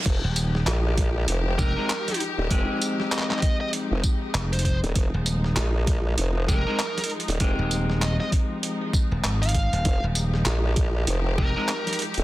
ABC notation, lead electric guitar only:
X:1
M:4/4
L:1/16
Q:"Swing 16ths" 1/4=98
K:Fm
V:1 name="Lead electric guitar"
z8 z2 B4 z2 | z4 e e e e z4 z c c z | z8 z2 B4 z2 | z4 e e z6 z f3- |
f z8 z B4 z2 |]